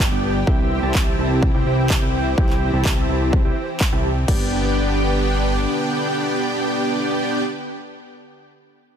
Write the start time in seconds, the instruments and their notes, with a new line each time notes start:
Already playing: analog synth pad D3 B3 G4
0.11 analog synth bass G1, supersaw synth B3 D4 G4 D5 G5
0.47 analog synth bass C2, analog synth pad E3 C4, supersaw synth C4 E4 G4 E5 G5, kick
0.83 analog synth bass C2, supersaw synth C4 E4 G4 E5 A5
0.95 kick, clap
1.19 analog synth bass C2, supersaw synth C4 E4 G4 E5 A5
1.43 kick
1.54 analog synth bass C2, supersaw synth C4 E4 G4 E5 G5
1.66 analog synth bass C2, supersaw synth C4 E4 G4 E5 G5
1.90 kick, clap
2.02 analog synth bass C2, supersaw synth C4 E4 G4 E5 G5
2.38 analog synth bass C2, supersaw synth C4 E4 G4 E5 G5, kick
2.50 clap
2.73 analog synth bass C2, supersaw synth C4 E4 G4 E5 A5
2.85 kick, clap
3.09 analog synth bass C2, supersaw synth C4 E4 G4 E5 A5
3.33 kick
3.45 analog synth bass C2, supersaw synth C4 E4 G4 E5 G5
3.81 kick, clap
3.93 analog synth bass C2, supersaw synth C4 E4 G4 E5 A5
4.28 analog synth bass G1, analog synth pad D3 B3 G4, supersaw synth B3 D4 G4 D5 G5, kick, crash